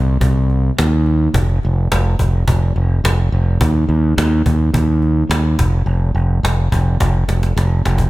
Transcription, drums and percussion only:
0.21 cajon bass medium
0.50 cajon slap soft
0.78 cajon slap medium
1.06 cajon slap soft
1.34 cajon bass medium
1.50 cajon slap soft
1.63 cajon slap soft
1.92 cajon slap medium
2.19 cajon bass medium
2.48 cajon bass medium
2.76 cajon slap soft
3.05 cajon slap medium
3.33 cajon slap soft
3.61 cajon bass medium
3.89 cajon slap soft
4.18 cajon slap loud
4.46 cajon bass medium
4.74 cajon bass medium
5.02 cajon slap soft
5.31 cajon slap medium
5.59 cajon bass medium
5.87 cajon slap soft
6.16 cajon slap soft
6.45 cajon slap medium
6.72 cajon bass medium
7.00 cajon bass medium
7.00 cajon slap soft
7.29 cajon slap medium
7.43 cajon slap soft
7.57 cajon slap soft
7.57 cajon slap medium
7.85 cajon slap medium
7.98 cajon bass medium

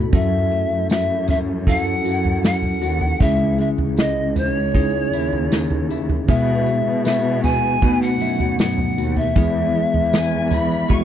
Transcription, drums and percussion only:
0.13 kick loud
0.13 floor tom loud
0.13 tambourine soft
0.89 snare loud
0.89 tambourine medium
1.28 floor tom medium
1.28 tambourine medium
1.67 kick medium
1.67 floor tom medium
2.05 tambourine medium
2.25 floor tom medium
2.44 snare loud
2.44 tambourine medium
2.62 floor tom medium
2.83 tambourine medium
3.01 floor tom medium
3.20 kick loud
3.20 floor tom loud
3.20 tambourine soft
3.78 floor tom medium
3.98 snare loud
3.98 tambourine medium
4.36 floor tom medium
4.36 tambourine medium
4.74 kick medium
4.74 floor tom medium
4.74 tambourine soft
5.13 tambourine soft
5.33 floor tom medium
5.52 snare loud
5.52 tambourine medium
5.70 floor tom medium
5.91 tambourine soft
6.09 floor tom medium
6.28 kick loud
6.28 floor tom loud
6.28 tambourine soft
6.66 tambourine soft
7.05 snare loud
7.05 tambourine medium
7.43 floor tom medium
7.43 tambourine medium
7.82 kick medium
7.82 floor tom medium
7.82 tambourine soft
8.21 tambourine soft
8.40 floor tom medium
8.59 snare loud
8.59 tambourine medium
8.78 floor tom medium
8.98 tambourine soft
9.16 floor tom medium
9.36 kick loud
9.36 floor tom loud
9.36 tambourine soft
9.94 floor tom medium
10.13 snare loud
10.13 tambourine medium
10.51 floor tom medium
10.51 tambourine medium
10.90 kick medium
10.90 floor tom medium

